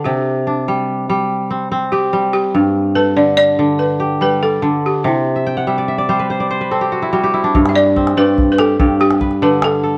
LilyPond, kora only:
<<
  \new Staff \with { instrumentName = "Kora" } { \time 12/8 \key g \major \tempo 4. = 96 r4 d'4. r4 c'4 g'4. | r4 a'4. r4 g'4 d''4. | r8. e''16 g''16 fis''16 e''16 d''16 e''16 d''16 c''16 b'16 c''16 d''16 c''16 b'16 a'16 g'16 fis'16 e'16 fis'16 g'16 e'16 d'16~ | d'16 r8. c'8 d''4 g'8 g'4 b'4. a'8 | }
  \new Staff \with { instrumentName = "Kora" } { \clef bass \time 12/8 \key g \major c4 r8 g4 g4 r8 c'4 g4 | g,4 r8 d4 d4 r8 g4 d4 | c4 r8 g4 g4 r8 c'4 g4 | g,4 r8 g,4 r8 g,4 r8 d4 r8 | }
>>